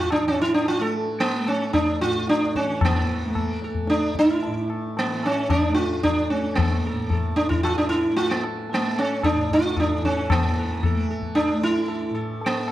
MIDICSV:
0, 0, Header, 1, 4, 480
1, 0, Start_track
1, 0, Tempo, 539084
1, 2510, Time_signature, 7, 2, 24, 8
1, 5860, Tempo, 530504
1, 11412, End_track
2, 0, Start_track
2, 0, Title_t, "Sitar"
2, 0, Program_c, 0, 104
2, 0, Note_on_c, 0, 65, 77
2, 103, Note_off_c, 0, 65, 0
2, 106, Note_on_c, 0, 62, 76
2, 228, Note_off_c, 0, 62, 0
2, 248, Note_on_c, 0, 61, 77
2, 359, Note_off_c, 0, 61, 0
2, 368, Note_on_c, 0, 64, 88
2, 479, Note_off_c, 0, 64, 0
2, 484, Note_on_c, 0, 62, 76
2, 597, Note_off_c, 0, 62, 0
2, 606, Note_on_c, 0, 65, 82
2, 718, Note_off_c, 0, 65, 0
2, 724, Note_on_c, 0, 69, 84
2, 827, Note_off_c, 0, 69, 0
2, 1070, Note_on_c, 0, 58, 83
2, 1316, Note_off_c, 0, 58, 0
2, 1317, Note_on_c, 0, 61, 77
2, 1539, Note_off_c, 0, 61, 0
2, 1543, Note_on_c, 0, 62, 79
2, 1789, Note_off_c, 0, 62, 0
2, 1793, Note_on_c, 0, 65, 86
2, 2038, Note_off_c, 0, 65, 0
2, 2041, Note_on_c, 0, 62, 90
2, 2276, Note_off_c, 0, 62, 0
2, 2279, Note_on_c, 0, 61, 73
2, 2522, Note_off_c, 0, 61, 0
2, 2536, Note_on_c, 0, 58, 71
2, 3207, Note_off_c, 0, 58, 0
2, 3241, Note_on_c, 0, 69, 37
2, 3459, Note_off_c, 0, 69, 0
2, 3469, Note_on_c, 0, 62, 75
2, 3692, Note_off_c, 0, 62, 0
2, 3728, Note_on_c, 0, 64, 98
2, 4165, Note_off_c, 0, 64, 0
2, 4440, Note_on_c, 0, 58, 76
2, 4680, Note_off_c, 0, 58, 0
2, 4680, Note_on_c, 0, 61, 81
2, 4894, Note_off_c, 0, 61, 0
2, 4898, Note_on_c, 0, 62, 84
2, 5111, Note_off_c, 0, 62, 0
2, 5115, Note_on_c, 0, 65, 85
2, 5368, Note_off_c, 0, 65, 0
2, 5372, Note_on_c, 0, 62, 83
2, 5607, Note_off_c, 0, 62, 0
2, 5611, Note_on_c, 0, 61, 68
2, 5836, Note_on_c, 0, 58, 75
2, 5862, Note_off_c, 0, 61, 0
2, 6117, Note_on_c, 0, 69, 36
2, 6335, Note_off_c, 0, 69, 0
2, 6355, Note_on_c, 0, 69, 30
2, 6565, Note_on_c, 0, 62, 76
2, 6575, Note_off_c, 0, 69, 0
2, 6595, Note_off_c, 0, 58, 0
2, 6679, Note_off_c, 0, 62, 0
2, 6683, Note_on_c, 0, 64, 70
2, 6808, Note_off_c, 0, 64, 0
2, 6811, Note_on_c, 0, 65, 76
2, 6939, Note_off_c, 0, 65, 0
2, 6942, Note_on_c, 0, 62, 69
2, 7041, Note_off_c, 0, 62, 0
2, 7045, Note_on_c, 0, 64, 76
2, 7289, Note_off_c, 0, 64, 0
2, 7293, Note_on_c, 0, 65, 88
2, 7424, Note_on_c, 0, 58, 63
2, 7426, Note_off_c, 0, 65, 0
2, 7539, Note_off_c, 0, 58, 0
2, 7802, Note_on_c, 0, 69, 32
2, 7813, Note_on_c, 0, 58, 72
2, 8021, Note_off_c, 0, 69, 0
2, 8036, Note_on_c, 0, 61, 78
2, 8050, Note_off_c, 0, 58, 0
2, 8264, Note_off_c, 0, 61, 0
2, 8268, Note_on_c, 0, 62, 79
2, 8271, Note_on_c, 0, 69, 34
2, 8494, Note_off_c, 0, 69, 0
2, 8518, Note_off_c, 0, 62, 0
2, 8529, Note_on_c, 0, 65, 86
2, 8532, Note_on_c, 0, 69, 34
2, 8745, Note_off_c, 0, 69, 0
2, 8762, Note_on_c, 0, 69, 34
2, 8766, Note_off_c, 0, 65, 0
2, 8769, Note_on_c, 0, 62, 76
2, 8981, Note_off_c, 0, 69, 0
2, 8994, Note_off_c, 0, 62, 0
2, 8997, Note_on_c, 0, 61, 69
2, 8999, Note_on_c, 0, 69, 29
2, 9218, Note_off_c, 0, 69, 0
2, 9239, Note_on_c, 0, 58, 75
2, 9243, Note_off_c, 0, 61, 0
2, 9489, Note_on_c, 0, 69, 37
2, 9704, Note_off_c, 0, 69, 0
2, 9726, Note_on_c, 0, 69, 35
2, 9918, Note_off_c, 0, 58, 0
2, 9942, Note_off_c, 0, 69, 0
2, 9954, Note_on_c, 0, 69, 38
2, 10175, Note_off_c, 0, 69, 0
2, 10175, Note_on_c, 0, 62, 83
2, 10428, Note_off_c, 0, 62, 0
2, 10431, Note_on_c, 0, 64, 93
2, 10667, Note_on_c, 0, 69, 38
2, 10873, Note_off_c, 0, 64, 0
2, 10889, Note_off_c, 0, 69, 0
2, 10898, Note_on_c, 0, 69, 36
2, 11123, Note_off_c, 0, 69, 0
2, 11180, Note_on_c, 0, 58, 87
2, 11406, Note_off_c, 0, 58, 0
2, 11412, End_track
3, 0, Start_track
3, 0, Title_t, "Tanpura"
3, 0, Program_c, 1, 104
3, 0, Note_on_c, 1, 45, 59
3, 0, Note_on_c, 1, 52, 58
3, 0, Note_on_c, 1, 57, 57
3, 160, Note_off_c, 1, 52, 0
3, 164, Note_on_c, 1, 52, 45
3, 697, Note_off_c, 1, 57, 0
3, 697, Note_on_c, 1, 57, 57
3, 1244, Note_off_c, 1, 57, 0
3, 1244, Note_on_c, 1, 57, 52
3, 1784, Note_off_c, 1, 45, 0
3, 1787, Note_on_c, 1, 45, 51
3, 2345, Note_off_c, 1, 52, 0
3, 2349, Note_on_c, 1, 52, 62
3, 2893, Note_off_c, 1, 57, 0
3, 2893, Note_on_c, 1, 57, 55
3, 3416, Note_off_c, 1, 57, 0
3, 3416, Note_on_c, 1, 57, 60
3, 3972, Note_off_c, 1, 45, 0
3, 3975, Note_on_c, 1, 45, 59
3, 4505, Note_off_c, 1, 52, 0
3, 4509, Note_on_c, 1, 52, 57
3, 5050, Note_off_c, 1, 57, 0
3, 5050, Note_on_c, 1, 57, 55
3, 5604, Note_off_c, 1, 57, 0
3, 5604, Note_on_c, 1, 57, 50
3, 6160, Note_off_c, 1, 45, 0
3, 6164, Note_on_c, 1, 45, 52
3, 6704, Note_off_c, 1, 52, 0
3, 6707, Note_on_c, 1, 52, 55
3, 7244, Note_off_c, 1, 57, 0
3, 7244, Note_on_c, 1, 57, 55
3, 7794, Note_off_c, 1, 57, 0
3, 7794, Note_on_c, 1, 57, 54
3, 8338, Note_off_c, 1, 45, 0
3, 8342, Note_on_c, 1, 45, 53
3, 8869, Note_off_c, 1, 52, 0
3, 8873, Note_on_c, 1, 52, 50
3, 9236, Note_off_c, 1, 52, 0
3, 9236, Note_on_c, 1, 52, 53
3, 9789, Note_off_c, 1, 57, 0
3, 9789, Note_on_c, 1, 57, 61
3, 10333, Note_off_c, 1, 57, 0
3, 10333, Note_on_c, 1, 57, 64
3, 10851, Note_off_c, 1, 45, 0
3, 10855, Note_on_c, 1, 45, 62
3, 11412, Note_off_c, 1, 45, 0
3, 11412, Note_off_c, 1, 52, 0
3, 11412, Note_off_c, 1, 57, 0
3, 11412, End_track
4, 0, Start_track
4, 0, Title_t, "Tabla"
4, 93, Note_on_c, 9, 60, 67
4, 182, Note_off_c, 9, 60, 0
4, 584, Note_on_c, 9, 63, 74
4, 673, Note_off_c, 9, 63, 0
4, 1075, Note_on_c, 9, 63, 72
4, 1164, Note_off_c, 9, 63, 0
4, 1306, Note_on_c, 9, 60, 54
4, 1396, Note_off_c, 9, 60, 0
4, 1544, Note_on_c, 9, 60, 68
4, 1544, Note_on_c, 9, 64, 64
4, 1634, Note_off_c, 9, 60, 0
4, 1634, Note_off_c, 9, 64, 0
4, 2022, Note_on_c, 9, 62, 77
4, 2111, Note_off_c, 9, 62, 0
4, 2143, Note_on_c, 9, 62, 50
4, 2232, Note_off_c, 9, 62, 0
4, 2274, Note_on_c, 9, 37, 52
4, 2363, Note_off_c, 9, 37, 0
4, 2387, Note_on_c, 9, 62, 57
4, 2476, Note_off_c, 9, 62, 0
4, 2504, Note_on_c, 9, 60, 94
4, 2504, Note_on_c, 9, 64, 87
4, 2593, Note_off_c, 9, 60, 0
4, 2593, Note_off_c, 9, 64, 0
4, 2985, Note_on_c, 9, 60, 65
4, 2985, Note_on_c, 9, 64, 61
4, 3074, Note_off_c, 9, 60, 0
4, 3074, Note_off_c, 9, 64, 0
4, 3224, Note_on_c, 9, 62, 48
4, 3313, Note_off_c, 9, 62, 0
4, 3335, Note_on_c, 9, 64, 52
4, 3424, Note_off_c, 9, 64, 0
4, 3450, Note_on_c, 9, 62, 74
4, 3539, Note_off_c, 9, 62, 0
4, 3566, Note_on_c, 9, 62, 59
4, 3655, Note_off_c, 9, 62, 0
4, 3696, Note_on_c, 9, 37, 55
4, 3786, Note_off_c, 9, 37, 0
4, 3820, Note_on_c, 9, 62, 54
4, 3909, Note_off_c, 9, 62, 0
4, 3943, Note_on_c, 9, 63, 75
4, 4032, Note_off_c, 9, 63, 0
4, 4184, Note_on_c, 9, 60, 56
4, 4273, Note_off_c, 9, 60, 0
4, 4424, Note_on_c, 9, 63, 75
4, 4514, Note_off_c, 9, 63, 0
4, 4659, Note_on_c, 9, 60, 50
4, 4748, Note_off_c, 9, 60, 0
4, 4894, Note_on_c, 9, 60, 69
4, 4894, Note_on_c, 9, 64, 65
4, 4983, Note_off_c, 9, 60, 0
4, 4983, Note_off_c, 9, 64, 0
4, 5139, Note_on_c, 9, 62, 55
4, 5228, Note_off_c, 9, 62, 0
4, 5376, Note_on_c, 9, 63, 73
4, 5376, Note_on_c, 9, 64, 67
4, 5466, Note_off_c, 9, 63, 0
4, 5466, Note_off_c, 9, 64, 0
4, 5858, Note_on_c, 9, 60, 87
4, 5858, Note_on_c, 9, 64, 78
4, 5949, Note_off_c, 9, 60, 0
4, 5949, Note_off_c, 9, 64, 0
4, 6330, Note_on_c, 9, 60, 65
4, 6330, Note_on_c, 9, 64, 60
4, 6421, Note_off_c, 9, 60, 0
4, 6421, Note_off_c, 9, 64, 0
4, 6584, Note_on_c, 9, 62, 50
4, 6675, Note_off_c, 9, 62, 0
4, 6698, Note_on_c, 9, 64, 49
4, 6788, Note_off_c, 9, 64, 0
4, 6824, Note_on_c, 9, 60, 78
4, 6915, Note_off_c, 9, 60, 0
4, 7303, Note_on_c, 9, 63, 77
4, 7393, Note_off_c, 9, 63, 0
4, 7536, Note_on_c, 9, 60, 56
4, 7626, Note_off_c, 9, 60, 0
4, 7773, Note_on_c, 9, 63, 73
4, 7864, Note_off_c, 9, 63, 0
4, 8017, Note_on_c, 9, 60, 56
4, 8107, Note_off_c, 9, 60, 0
4, 8261, Note_on_c, 9, 60, 75
4, 8261, Note_on_c, 9, 64, 69
4, 8351, Note_off_c, 9, 60, 0
4, 8351, Note_off_c, 9, 64, 0
4, 8503, Note_on_c, 9, 64, 52
4, 8593, Note_off_c, 9, 64, 0
4, 8740, Note_on_c, 9, 60, 70
4, 8740, Note_on_c, 9, 64, 62
4, 8831, Note_off_c, 9, 60, 0
4, 8831, Note_off_c, 9, 64, 0
4, 8985, Note_on_c, 9, 64, 46
4, 9075, Note_off_c, 9, 64, 0
4, 9224, Note_on_c, 9, 60, 105
4, 9224, Note_on_c, 9, 64, 83
4, 9315, Note_off_c, 9, 60, 0
4, 9315, Note_off_c, 9, 64, 0
4, 9706, Note_on_c, 9, 60, 71
4, 9706, Note_on_c, 9, 64, 67
4, 9797, Note_off_c, 9, 60, 0
4, 9797, Note_off_c, 9, 64, 0
4, 9939, Note_on_c, 9, 62, 54
4, 10029, Note_off_c, 9, 62, 0
4, 10055, Note_on_c, 9, 64, 52
4, 10145, Note_off_c, 9, 64, 0
4, 10178, Note_on_c, 9, 60, 80
4, 10269, Note_off_c, 9, 60, 0
4, 10656, Note_on_c, 9, 63, 81
4, 10747, Note_off_c, 9, 63, 0
4, 10895, Note_on_c, 9, 60, 59
4, 10985, Note_off_c, 9, 60, 0
4, 11138, Note_on_c, 9, 63, 73
4, 11228, Note_off_c, 9, 63, 0
4, 11377, Note_on_c, 9, 60, 58
4, 11412, Note_off_c, 9, 60, 0
4, 11412, End_track
0, 0, End_of_file